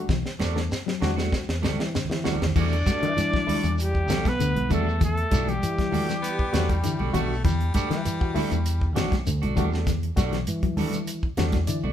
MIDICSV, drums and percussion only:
0, 0, Header, 1, 3, 480
1, 0, Start_track
1, 0, Key_signature, 1, "minor"
1, 0, Tempo, 614125
1, 70, Time_signature, 4, 2, 24, 8
1, 4391, Tempo, 606673
1, 9384, End_track
2, 0, Start_track
2, 0, Title_t, "Shekere"
2, 80, Note_on_c, 9, 82, 72
2, 158, Note_off_c, 9, 82, 0
2, 326, Note_on_c, 9, 82, 90
2, 404, Note_off_c, 9, 82, 0
2, 448, Note_on_c, 9, 82, 28
2, 526, Note_off_c, 9, 82, 0
2, 562, Note_on_c, 9, 82, 87
2, 641, Note_off_c, 9, 82, 0
2, 809, Note_on_c, 9, 82, 30
2, 887, Note_off_c, 9, 82, 0
2, 934, Note_on_c, 9, 82, 67
2, 1012, Note_off_c, 9, 82, 0
2, 1050, Note_on_c, 9, 82, 67
2, 1128, Note_off_c, 9, 82, 0
2, 1289, Note_on_c, 9, 82, 82
2, 1367, Note_off_c, 9, 82, 0
2, 1421, Note_on_c, 9, 82, 28
2, 1499, Note_off_c, 9, 82, 0
2, 1530, Note_on_c, 9, 82, 96
2, 1608, Note_off_c, 9, 82, 0
2, 1767, Note_on_c, 9, 82, 75
2, 1845, Note_off_c, 9, 82, 0
2, 1893, Note_on_c, 9, 82, 27
2, 1971, Note_off_c, 9, 82, 0
2, 2005, Note_on_c, 9, 82, 67
2, 2083, Note_off_c, 9, 82, 0
2, 2241, Note_on_c, 9, 82, 93
2, 2319, Note_off_c, 9, 82, 0
2, 2373, Note_on_c, 9, 82, 29
2, 2452, Note_off_c, 9, 82, 0
2, 2485, Note_on_c, 9, 82, 89
2, 2563, Note_off_c, 9, 82, 0
2, 2721, Note_on_c, 9, 82, 32
2, 2799, Note_off_c, 9, 82, 0
2, 2845, Note_on_c, 9, 82, 75
2, 2923, Note_off_c, 9, 82, 0
2, 2958, Note_on_c, 9, 82, 77
2, 3036, Note_off_c, 9, 82, 0
2, 3194, Note_on_c, 9, 82, 85
2, 3273, Note_off_c, 9, 82, 0
2, 3323, Note_on_c, 9, 82, 33
2, 3401, Note_off_c, 9, 82, 0
2, 3444, Note_on_c, 9, 82, 88
2, 3523, Note_off_c, 9, 82, 0
2, 3685, Note_on_c, 9, 82, 72
2, 3764, Note_off_c, 9, 82, 0
2, 3816, Note_on_c, 9, 82, 29
2, 3894, Note_off_c, 9, 82, 0
2, 3923, Note_on_c, 9, 82, 73
2, 4001, Note_off_c, 9, 82, 0
2, 4171, Note_on_c, 9, 82, 100
2, 4250, Note_off_c, 9, 82, 0
2, 4291, Note_on_c, 9, 82, 30
2, 4369, Note_off_c, 9, 82, 0
2, 4402, Note_on_c, 9, 82, 82
2, 4481, Note_off_c, 9, 82, 0
2, 4635, Note_on_c, 9, 82, 30
2, 4714, Note_off_c, 9, 82, 0
2, 4769, Note_on_c, 9, 82, 73
2, 4848, Note_off_c, 9, 82, 0
2, 4886, Note_on_c, 9, 82, 69
2, 4966, Note_off_c, 9, 82, 0
2, 5124, Note_on_c, 9, 82, 87
2, 5203, Note_off_c, 9, 82, 0
2, 5262, Note_on_c, 9, 82, 33
2, 5341, Note_off_c, 9, 82, 0
2, 5372, Note_on_c, 9, 82, 92
2, 5451, Note_off_c, 9, 82, 0
2, 5611, Note_on_c, 9, 82, 73
2, 5690, Note_off_c, 9, 82, 0
2, 5744, Note_on_c, 9, 82, 32
2, 5823, Note_off_c, 9, 82, 0
2, 5863, Note_on_c, 9, 82, 72
2, 5942, Note_off_c, 9, 82, 0
2, 6092, Note_on_c, 9, 82, 93
2, 6171, Note_off_c, 9, 82, 0
2, 6218, Note_on_c, 9, 82, 30
2, 6297, Note_off_c, 9, 82, 0
2, 6324, Note_on_c, 9, 82, 85
2, 6403, Note_off_c, 9, 82, 0
2, 6571, Note_on_c, 9, 82, 33
2, 6650, Note_off_c, 9, 82, 0
2, 6687, Note_on_c, 9, 82, 68
2, 6766, Note_off_c, 9, 82, 0
2, 6804, Note_on_c, 9, 82, 72
2, 6883, Note_off_c, 9, 82, 0
2, 7043, Note_on_c, 9, 82, 83
2, 7123, Note_off_c, 9, 82, 0
2, 7177, Note_on_c, 9, 82, 33
2, 7256, Note_off_c, 9, 82, 0
2, 7278, Note_on_c, 9, 82, 96
2, 7358, Note_off_c, 9, 82, 0
2, 7519, Note_on_c, 9, 82, 72
2, 7598, Note_off_c, 9, 82, 0
2, 7640, Note_on_c, 9, 82, 28
2, 7719, Note_off_c, 9, 82, 0
2, 7756, Note_on_c, 9, 82, 74
2, 7835, Note_off_c, 9, 82, 0
2, 7998, Note_on_c, 9, 82, 98
2, 8077, Note_off_c, 9, 82, 0
2, 8128, Note_on_c, 9, 82, 28
2, 8207, Note_off_c, 9, 82, 0
2, 8238, Note_on_c, 9, 82, 90
2, 8317, Note_off_c, 9, 82, 0
2, 8478, Note_on_c, 9, 82, 31
2, 8557, Note_off_c, 9, 82, 0
2, 8596, Note_on_c, 9, 82, 76
2, 8675, Note_off_c, 9, 82, 0
2, 8712, Note_on_c, 9, 82, 75
2, 8791, Note_off_c, 9, 82, 0
2, 8957, Note_on_c, 9, 82, 76
2, 9036, Note_off_c, 9, 82, 0
2, 9083, Note_on_c, 9, 82, 33
2, 9162, Note_off_c, 9, 82, 0
2, 9190, Note_on_c, 9, 82, 94
2, 9269, Note_off_c, 9, 82, 0
2, 9384, End_track
3, 0, Start_track
3, 0, Title_t, "Drums"
3, 67, Note_on_c, 9, 64, 67
3, 70, Note_on_c, 9, 36, 95
3, 74, Note_on_c, 9, 38, 57
3, 145, Note_off_c, 9, 64, 0
3, 149, Note_off_c, 9, 36, 0
3, 152, Note_off_c, 9, 38, 0
3, 200, Note_on_c, 9, 38, 47
3, 278, Note_off_c, 9, 38, 0
3, 309, Note_on_c, 9, 63, 94
3, 315, Note_on_c, 9, 38, 63
3, 387, Note_off_c, 9, 63, 0
3, 393, Note_off_c, 9, 38, 0
3, 444, Note_on_c, 9, 38, 48
3, 522, Note_off_c, 9, 38, 0
3, 563, Note_on_c, 9, 38, 62
3, 641, Note_off_c, 9, 38, 0
3, 688, Note_on_c, 9, 38, 56
3, 766, Note_off_c, 9, 38, 0
3, 799, Note_on_c, 9, 63, 91
3, 799, Note_on_c, 9, 64, 94
3, 800, Note_on_c, 9, 38, 70
3, 877, Note_off_c, 9, 63, 0
3, 877, Note_off_c, 9, 64, 0
3, 879, Note_off_c, 9, 38, 0
3, 925, Note_on_c, 9, 38, 54
3, 1003, Note_off_c, 9, 38, 0
3, 1035, Note_on_c, 9, 36, 79
3, 1039, Note_on_c, 9, 38, 68
3, 1113, Note_off_c, 9, 36, 0
3, 1117, Note_off_c, 9, 38, 0
3, 1165, Note_on_c, 9, 38, 68
3, 1243, Note_off_c, 9, 38, 0
3, 1275, Note_on_c, 9, 63, 84
3, 1285, Note_on_c, 9, 38, 76
3, 1353, Note_off_c, 9, 63, 0
3, 1358, Note_on_c, 9, 63, 84
3, 1364, Note_off_c, 9, 38, 0
3, 1409, Note_on_c, 9, 38, 73
3, 1436, Note_off_c, 9, 63, 0
3, 1487, Note_off_c, 9, 38, 0
3, 1525, Note_on_c, 9, 38, 82
3, 1603, Note_off_c, 9, 38, 0
3, 1605, Note_on_c, 9, 64, 72
3, 1651, Note_on_c, 9, 38, 74
3, 1683, Note_off_c, 9, 64, 0
3, 1730, Note_off_c, 9, 38, 0
3, 1761, Note_on_c, 9, 38, 81
3, 1768, Note_on_c, 9, 64, 80
3, 1840, Note_off_c, 9, 38, 0
3, 1841, Note_off_c, 9, 64, 0
3, 1841, Note_on_c, 9, 64, 83
3, 1893, Note_on_c, 9, 38, 76
3, 1919, Note_off_c, 9, 64, 0
3, 1922, Note_on_c, 9, 64, 82
3, 1971, Note_off_c, 9, 38, 0
3, 1999, Note_on_c, 9, 36, 94
3, 2000, Note_off_c, 9, 64, 0
3, 2002, Note_on_c, 9, 49, 84
3, 2077, Note_off_c, 9, 36, 0
3, 2080, Note_off_c, 9, 49, 0
3, 2131, Note_on_c, 9, 42, 35
3, 2209, Note_off_c, 9, 42, 0
3, 2239, Note_on_c, 9, 36, 78
3, 2244, Note_on_c, 9, 42, 54
3, 2245, Note_on_c, 9, 63, 102
3, 2249, Note_on_c, 9, 38, 30
3, 2317, Note_off_c, 9, 36, 0
3, 2322, Note_off_c, 9, 42, 0
3, 2323, Note_off_c, 9, 63, 0
3, 2327, Note_off_c, 9, 38, 0
3, 2367, Note_on_c, 9, 42, 37
3, 2445, Note_off_c, 9, 42, 0
3, 2484, Note_on_c, 9, 63, 81
3, 2485, Note_on_c, 9, 42, 64
3, 2489, Note_on_c, 9, 38, 28
3, 2562, Note_off_c, 9, 63, 0
3, 2563, Note_off_c, 9, 42, 0
3, 2567, Note_off_c, 9, 38, 0
3, 2607, Note_on_c, 9, 36, 70
3, 2619, Note_on_c, 9, 38, 27
3, 2685, Note_off_c, 9, 36, 0
3, 2697, Note_off_c, 9, 38, 0
3, 2724, Note_on_c, 9, 63, 101
3, 2724, Note_on_c, 9, 64, 89
3, 2730, Note_on_c, 9, 46, 69
3, 2802, Note_off_c, 9, 63, 0
3, 2802, Note_off_c, 9, 64, 0
3, 2808, Note_off_c, 9, 46, 0
3, 2858, Note_on_c, 9, 42, 29
3, 2936, Note_off_c, 9, 42, 0
3, 2971, Note_on_c, 9, 42, 69
3, 3050, Note_off_c, 9, 42, 0
3, 3086, Note_on_c, 9, 36, 70
3, 3165, Note_off_c, 9, 36, 0
3, 3205, Note_on_c, 9, 42, 52
3, 3205, Note_on_c, 9, 64, 70
3, 3209, Note_on_c, 9, 38, 73
3, 3283, Note_off_c, 9, 42, 0
3, 3283, Note_off_c, 9, 64, 0
3, 3287, Note_off_c, 9, 38, 0
3, 3324, Note_on_c, 9, 36, 81
3, 3328, Note_on_c, 9, 42, 35
3, 3331, Note_on_c, 9, 63, 96
3, 3332, Note_on_c, 9, 38, 31
3, 3402, Note_off_c, 9, 36, 0
3, 3406, Note_off_c, 9, 42, 0
3, 3409, Note_off_c, 9, 63, 0
3, 3411, Note_off_c, 9, 38, 0
3, 3442, Note_on_c, 9, 42, 78
3, 3520, Note_off_c, 9, 42, 0
3, 3567, Note_on_c, 9, 63, 87
3, 3568, Note_on_c, 9, 42, 33
3, 3645, Note_off_c, 9, 63, 0
3, 3646, Note_off_c, 9, 42, 0
3, 3676, Note_on_c, 9, 63, 61
3, 3676, Note_on_c, 9, 64, 84
3, 3678, Note_on_c, 9, 36, 69
3, 3681, Note_on_c, 9, 42, 49
3, 3754, Note_off_c, 9, 63, 0
3, 3754, Note_off_c, 9, 64, 0
3, 3756, Note_off_c, 9, 36, 0
3, 3760, Note_off_c, 9, 42, 0
3, 3911, Note_on_c, 9, 64, 66
3, 3917, Note_on_c, 9, 36, 103
3, 3919, Note_on_c, 9, 42, 75
3, 3989, Note_off_c, 9, 64, 0
3, 3995, Note_off_c, 9, 36, 0
3, 3997, Note_off_c, 9, 42, 0
3, 4044, Note_on_c, 9, 42, 33
3, 4122, Note_off_c, 9, 42, 0
3, 4154, Note_on_c, 9, 42, 55
3, 4156, Note_on_c, 9, 36, 76
3, 4160, Note_on_c, 9, 63, 107
3, 4232, Note_off_c, 9, 42, 0
3, 4234, Note_off_c, 9, 36, 0
3, 4238, Note_off_c, 9, 63, 0
3, 4283, Note_on_c, 9, 63, 73
3, 4287, Note_on_c, 9, 42, 34
3, 4361, Note_off_c, 9, 63, 0
3, 4366, Note_off_c, 9, 42, 0
3, 4401, Note_on_c, 9, 42, 62
3, 4481, Note_off_c, 9, 42, 0
3, 4523, Note_on_c, 9, 36, 65
3, 4528, Note_on_c, 9, 42, 35
3, 4533, Note_on_c, 9, 38, 28
3, 4602, Note_off_c, 9, 36, 0
3, 4607, Note_off_c, 9, 42, 0
3, 4612, Note_off_c, 9, 38, 0
3, 4634, Note_on_c, 9, 63, 87
3, 4634, Note_on_c, 9, 64, 94
3, 4648, Note_on_c, 9, 46, 67
3, 4713, Note_off_c, 9, 63, 0
3, 4713, Note_off_c, 9, 64, 0
3, 4727, Note_off_c, 9, 46, 0
3, 4768, Note_on_c, 9, 42, 34
3, 4773, Note_on_c, 9, 38, 26
3, 4847, Note_off_c, 9, 42, 0
3, 4852, Note_off_c, 9, 38, 0
3, 4884, Note_on_c, 9, 42, 80
3, 4963, Note_off_c, 9, 42, 0
3, 5003, Note_on_c, 9, 36, 71
3, 5083, Note_off_c, 9, 36, 0
3, 5115, Note_on_c, 9, 64, 66
3, 5118, Note_on_c, 9, 42, 56
3, 5123, Note_on_c, 9, 38, 73
3, 5194, Note_off_c, 9, 64, 0
3, 5197, Note_off_c, 9, 42, 0
3, 5202, Note_off_c, 9, 38, 0
3, 5243, Note_on_c, 9, 36, 80
3, 5243, Note_on_c, 9, 42, 36
3, 5244, Note_on_c, 9, 63, 86
3, 5322, Note_off_c, 9, 36, 0
3, 5322, Note_off_c, 9, 42, 0
3, 5323, Note_off_c, 9, 63, 0
3, 5356, Note_on_c, 9, 42, 80
3, 5435, Note_off_c, 9, 42, 0
3, 5479, Note_on_c, 9, 63, 86
3, 5558, Note_off_c, 9, 63, 0
3, 5593, Note_on_c, 9, 64, 79
3, 5597, Note_on_c, 9, 36, 62
3, 5599, Note_on_c, 9, 42, 56
3, 5672, Note_off_c, 9, 64, 0
3, 5676, Note_off_c, 9, 36, 0
3, 5678, Note_off_c, 9, 42, 0
3, 5837, Note_on_c, 9, 36, 108
3, 5837, Note_on_c, 9, 64, 76
3, 5838, Note_on_c, 9, 42, 72
3, 5916, Note_off_c, 9, 36, 0
3, 5917, Note_off_c, 9, 42, 0
3, 5917, Note_off_c, 9, 64, 0
3, 5964, Note_on_c, 9, 42, 35
3, 6043, Note_off_c, 9, 42, 0
3, 6070, Note_on_c, 9, 42, 63
3, 6073, Note_on_c, 9, 63, 101
3, 6076, Note_on_c, 9, 36, 77
3, 6149, Note_off_c, 9, 42, 0
3, 6152, Note_off_c, 9, 63, 0
3, 6155, Note_off_c, 9, 36, 0
3, 6203, Note_on_c, 9, 63, 70
3, 6205, Note_on_c, 9, 42, 37
3, 6210, Note_on_c, 9, 38, 27
3, 6282, Note_off_c, 9, 63, 0
3, 6284, Note_off_c, 9, 42, 0
3, 6289, Note_off_c, 9, 38, 0
3, 6319, Note_on_c, 9, 42, 66
3, 6398, Note_off_c, 9, 42, 0
3, 6443, Note_on_c, 9, 36, 80
3, 6522, Note_off_c, 9, 36, 0
3, 6558, Note_on_c, 9, 46, 70
3, 6558, Note_on_c, 9, 63, 89
3, 6558, Note_on_c, 9, 64, 94
3, 6637, Note_off_c, 9, 46, 0
3, 6637, Note_off_c, 9, 63, 0
3, 6637, Note_off_c, 9, 64, 0
3, 6685, Note_on_c, 9, 42, 30
3, 6764, Note_off_c, 9, 42, 0
3, 6796, Note_on_c, 9, 42, 84
3, 6875, Note_off_c, 9, 42, 0
3, 6920, Note_on_c, 9, 36, 67
3, 6999, Note_off_c, 9, 36, 0
3, 7038, Note_on_c, 9, 42, 53
3, 7043, Note_on_c, 9, 38, 81
3, 7045, Note_on_c, 9, 64, 64
3, 7117, Note_off_c, 9, 42, 0
3, 7122, Note_off_c, 9, 38, 0
3, 7124, Note_off_c, 9, 64, 0
3, 7162, Note_on_c, 9, 36, 79
3, 7166, Note_on_c, 9, 42, 34
3, 7171, Note_on_c, 9, 38, 28
3, 7172, Note_on_c, 9, 63, 90
3, 7241, Note_off_c, 9, 36, 0
3, 7245, Note_off_c, 9, 42, 0
3, 7250, Note_off_c, 9, 38, 0
3, 7251, Note_off_c, 9, 63, 0
3, 7280, Note_on_c, 9, 42, 65
3, 7359, Note_off_c, 9, 42, 0
3, 7405, Note_on_c, 9, 42, 31
3, 7412, Note_on_c, 9, 63, 94
3, 7484, Note_off_c, 9, 42, 0
3, 7491, Note_off_c, 9, 63, 0
3, 7517, Note_on_c, 9, 36, 75
3, 7521, Note_on_c, 9, 42, 53
3, 7522, Note_on_c, 9, 64, 81
3, 7596, Note_off_c, 9, 36, 0
3, 7600, Note_off_c, 9, 42, 0
3, 7601, Note_off_c, 9, 64, 0
3, 7652, Note_on_c, 9, 38, 33
3, 7731, Note_off_c, 9, 38, 0
3, 7754, Note_on_c, 9, 36, 97
3, 7757, Note_on_c, 9, 42, 69
3, 7761, Note_on_c, 9, 64, 70
3, 7762, Note_on_c, 9, 38, 32
3, 7833, Note_off_c, 9, 36, 0
3, 7836, Note_off_c, 9, 42, 0
3, 7840, Note_off_c, 9, 64, 0
3, 7841, Note_off_c, 9, 38, 0
3, 7882, Note_on_c, 9, 42, 34
3, 7961, Note_off_c, 9, 42, 0
3, 7992, Note_on_c, 9, 36, 70
3, 7992, Note_on_c, 9, 42, 59
3, 7996, Note_on_c, 9, 63, 105
3, 7997, Note_on_c, 9, 38, 29
3, 8071, Note_off_c, 9, 36, 0
3, 8071, Note_off_c, 9, 42, 0
3, 8075, Note_off_c, 9, 63, 0
3, 8076, Note_off_c, 9, 38, 0
3, 8117, Note_on_c, 9, 42, 34
3, 8122, Note_on_c, 9, 38, 25
3, 8196, Note_off_c, 9, 42, 0
3, 8201, Note_off_c, 9, 38, 0
3, 8229, Note_on_c, 9, 63, 75
3, 8230, Note_on_c, 9, 42, 66
3, 8308, Note_off_c, 9, 63, 0
3, 8309, Note_off_c, 9, 42, 0
3, 8355, Note_on_c, 9, 36, 73
3, 8356, Note_on_c, 9, 42, 33
3, 8434, Note_off_c, 9, 36, 0
3, 8435, Note_off_c, 9, 42, 0
3, 8468, Note_on_c, 9, 63, 89
3, 8468, Note_on_c, 9, 64, 92
3, 8473, Note_on_c, 9, 46, 73
3, 8547, Note_off_c, 9, 63, 0
3, 8547, Note_off_c, 9, 64, 0
3, 8552, Note_off_c, 9, 46, 0
3, 8590, Note_on_c, 9, 42, 32
3, 8669, Note_off_c, 9, 42, 0
3, 8708, Note_on_c, 9, 42, 82
3, 8787, Note_off_c, 9, 42, 0
3, 8831, Note_on_c, 9, 36, 69
3, 8910, Note_off_c, 9, 36, 0
3, 8944, Note_on_c, 9, 42, 57
3, 8944, Note_on_c, 9, 64, 70
3, 8949, Note_on_c, 9, 38, 72
3, 9023, Note_off_c, 9, 42, 0
3, 9024, Note_off_c, 9, 64, 0
3, 9028, Note_off_c, 9, 38, 0
3, 9063, Note_on_c, 9, 42, 36
3, 9064, Note_on_c, 9, 63, 95
3, 9068, Note_on_c, 9, 38, 30
3, 9070, Note_on_c, 9, 36, 79
3, 9142, Note_off_c, 9, 42, 0
3, 9143, Note_off_c, 9, 63, 0
3, 9147, Note_off_c, 9, 38, 0
3, 9149, Note_off_c, 9, 36, 0
3, 9182, Note_on_c, 9, 42, 84
3, 9261, Note_off_c, 9, 42, 0
3, 9312, Note_on_c, 9, 63, 88
3, 9384, Note_off_c, 9, 63, 0
3, 9384, End_track
0, 0, End_of_file